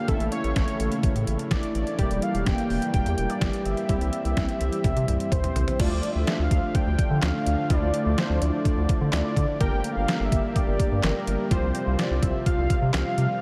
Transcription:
0.08 analog synth bass A1, analog synth pad C#3 E3 A3 E4, synth keys A3 C#4 E4 A4, analog synth lead E5, kick, closed hi-hat
0.20 analog synth bass A1, closed hi-hat
0.32 analog synth lead C#5, closed hi-hat
0.44 analog synth bass A1, closed hi-hat
0.56 analog synth bass A1, kick, snare, closed hi-hat
0.68 closed hi-hat
0.80 analog synth bass A1, closed hi-hat
0.92 closed hi-hat
1.03 analog synth bass A1, kick, closed hi-hat
1.15 analog synth bass A2, closed hi-hat
1.27 analog synth bass A1, closed hi-hat
1.39 closed hi-hat
1.51 analog synth bass A1, analog synth lead D5, kick, snare, closed hi-hat
1.63 closed hi-hat
1.75 analog synth bass A1, analog synth lead D5, closed hi-hat
1.87 closed hi-hat
1.99 analog synth bass E1, synth keys G3 A#3 E4 G4, analog synth pad G3 A#3 G4, kick, closed hi-hat
2.11 analog synth bass E1, closed hi-hat
2.22 analog synth lead F5, closed hi-hat
2.34 analog synth bass E1, closed hi-hat
2.46 analog synth bass E1, analog synth lead G5, kick, snare, closed hi-hat
2.58 closed hi-hat
2.70 analog synth bass E1, open hi-hat
2.82 closed hi-hat
2.94 analog synth bass E1, analog synth lead G5, kick, closed hi-hat
3.06 analog synth bass E2, closed hi-hat
3.18 analog synth bass E1, closed hi-hat
3.30 analog synth lead D5, closed hi-hat
3.41 analog synth bass G1, kick, snare, closed hi-hat
3.53 closed hi-hat
3.65 analog synth bass G1, analog synth lead E5, closed hi-hat
3.77 closed hi-hat
3.89 analog synth bass C2, synth keys G3 C4 E4 G4, analog synth pad C4, kick, closed hi-hat
4.01 analog synth bass C2, closed hi-hat
4.13 closed hi-hat
4.25 analog synth bass C2, closed hi-hat
4.37 analog synth bass C2, kick, snare, closed hi-hat
4.49 closed hi-hat
4.61 analog synth bass C2, closed hi-hat
4.72 closed hi-hat
4.84 analog synth bass C2, kick, closed hi-hat, high tom
4.96 analog synth bass C3, closed hi-hat
5.08 analog synth bass C2, closed hi-hat, mid tom
5.20 closed hi-hat
5.32 analog synth bass C2, analog synth lead C5, kick, closed hi-hat, mid tom
5.44 closed hi-hat, mid tom
5.56 analog synth bass C2, closed hi-hat, floor tom
5.68 closed hi-hat, floor tom
5.80 analog synth bass D2, analog synth pad D3 F3 A3 D4, synth keys A3 D4 F4, analog synth lead D5, kick, closed hi-hat, crash
5.92 analog synth bass D2
6.03 closed hi-hat
6.11 analog synth lead E5
6.15 analog synth bass D2
6.27 snare, closed hi-hat
6.39 analog synth bass D2
6.43 analog synth lead F5
6.51 analog synth bass D2, kick, closed hi-hat
6.75 analog synth lead G5, kick, closed hi-hat
6.87 analog synth bass D2
6.99 kick, closed hi-hat
7.11 analog synth bass D3
7.22 analog synth bass D2, analog synth lead F5, snare, clap, closed hi-hat
7.46 analog synth bass D2, closed hi-hat
7.70 analog synth bass D2, synth keys A3 D4 E4 F4, analog synth lead D5, kick, closed hi-hat
7.82 analog synth bass D2
7.94 closed hi-hat
8.06 analog synth bass D2
8.18 analog synth lead C5, snare, closed hi-hat
8.30 analog synth bass D2
8.42 analog synth bass D2, analog synth lead D5, closed hi-hat
8.65 kick, closed hi-hat
8.77 analog synth bass D2
8.89 kick, closed hi-hat
9.01 analog synth bass D3
9.13 analog synth bass D2, synth keys A3 D4 E4 F4, analog synth lead D5, snare, clap, closed hi-hat
9.37 analog synth bass D3, kick, closed hi-hat
9.60 analog synth bass G1, analog synth pad G3 A#3 G4, synth keys A#3 D4 G4 A#4, analog synth lead G5, kick, closed hi-hat
9.72 analog synth bass G1
9.84 closed hi-hat
9.92 analog synth bass G1, analog synth lead F5
10.08 snare, closed hi-hat
10.20 analog synth bass G1
10.24 analog synth lead E5
10.32 analog synth bass G1, kick, closed hi-hat
10.56 analog synth lead D5, kick, closed hi-hat
10.68 analog synth bass G1
10.80 kick, closed hi-hat
10.92 analog synth bass G2
11.03 analog synth bass G1, analog synth lead A#4, snare, clap, closed hi-hat
11.27 analog synth bass G1, closed hi-hat
11.51 analog synth bass C2, analog synth pad C3 F3 F4, synth keys C4 F4 G4 C5, analog synth lead C5, kick, closed hi-hat
11.63 analog synth bass C2
11.75 closed hi-hat
11.87 analog synth bass C2
11.98 analog synth lead D5, snare, closed hi-hat
12.11 analog synth bass C2
12.22 analog synth bass C2, analog synth lead E5, kick, closed hi-hat
12.46 analog synth lead F5, kick, closed hi-hat
12.58 analog synth bass C2
12.70 kick, closed hi-hat
12.82 analog synth bass C3
12.94 analog synth bass C2, analog synth lead F5, snare, clap, closed hi-hat
13.18 analog synth bass C3, closed hi-hat

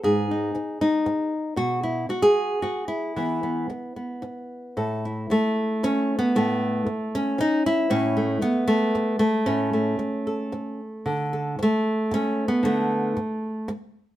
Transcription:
Already playing: nylon-string guitar B3
0.03 nylon-string guitar G#2 G#4
0.31 nylon-string guitar D#4
0.55 muted nylon-string guitar stroke
0.81 nylon-string guitar D#4
1.06 muted nylon-string guitar stroke
1.56 nylon-string guitar B2 F#4
1.83 nylon-string guitar E4
2.09 nylon-string guitar F#4, muted nylon-string guitar stroke
2.22 nylon-string guitar G#4
2.62 nylon-string guitar F#4, muted nylon-string guitar stroke
2.88 nylon-string guitar E4
3.16 nylon-string guitar E3 B3
3.43 nylon-string guitar B3
3.70 muted nylon-string guitar stroke
3.96 nylon-string guitar B3
4.22 muted nylon-string guitar stroke
4.77 nylon-string guitar A2 A4
5.05 nylon-string guitar E4
5.30 nylon-string guitar A3, muted nylon-string guitar stroke
5.83 nylon-string guitar C#4, muted nylon-string guitar stroke
6.19 nylon-string guitar B3
6.35 nylon-string guitar A2 A3
6.86 muted nylon-string guitar stroke
7.15 nylon-string guitar C#4
7.38 nylon-string guitar D#4, muted nylon-string guitar stroke
7.66 nylon-string guitar E4
7.90 nylon-string guitar A2 C#4
8.17 nylon-string guitar A3
8.42 nylon-string guitar B3, muted nylon-string guitar stroke
8.68 nylon-string guitar A3
8.95 muted nylon-string guitar stroke
9.19 nylon-string guitar A3
9.46 nylon-string guitar A2 C#4
9.73 nylon-string guitar A3
9.99 muted nylon-string guitar stroke
10.27 nylon-string guitar A4
10.52 muted nylon-string guitar stroke
11.06 nylon-string guitar D3
11.33 nylon-string guitar A4
11.59 nylon-string guitar A3, muted nylon-string guitar stroke
12.11 nylon-string guitar C#4, muted nylon-string guitar stroke
12.48 nylon-string guitar B3
12.63 nylon-string guitar D3 A3
13.17 muted nylon-string guitar stroke
13.68 muted nylon-string guitar stroke

